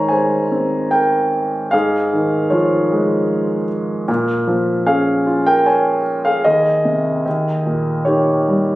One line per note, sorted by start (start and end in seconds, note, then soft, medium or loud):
0.00 1.69 G#2 soft
0.00 1.29 D#3 soft
0.00 0.10 C5 medium
0.00 1.75 C#5 medium
0.00 0.09 G#5 medium
0.00 0.10 A#5 medium
0.09 1.70 G#3 soft
0.09 0.88 C5 soft
0.09 0.87 G#5 medium
0.52 1.70 C4 soft
0.91 1.69 A#4 soft
0.91 1.75 G5 medium
1.71 4.05 G#2 medium
1.71 2.49 G#4 medium
1.71 2.54 F5 medium
2.13 3.66 D#3 soft
2.50 4.04 F3 soft
2.50 3.65 F4 soft
2.50 3.64 C#5 medium
2.92 4.06 G#3 soft
4.08 6.41 A#2 medium
4.47 6.02 F3 soft
4.86 6.41 C#4 soft
4.86 5.42 G#4 soft
4.86 5.48 F5 medium
5.27 6.42 F4 soft
5.46 5.65 A#4 medium
5.46 5.67 G5 medium
5.66 6.22 C#5 soft
5.66 6.28 G#5 medium
6.25 6.44 G#4 soft
6.25 6.46 F5 medium
6.44 7.23 D#2 medium
6.44 8.03 G#4 soft
6.44 8.03 D#5 medium
6.85 7.24 C3 soft
7.26 8.76 D#2 medium
7.66 8.76 A#2 soft
8.05 8.76 D#3 soft
8.05 8.76 G4 soft
8.05 8.76 C#5 medium
8.48 8.76 G3 soft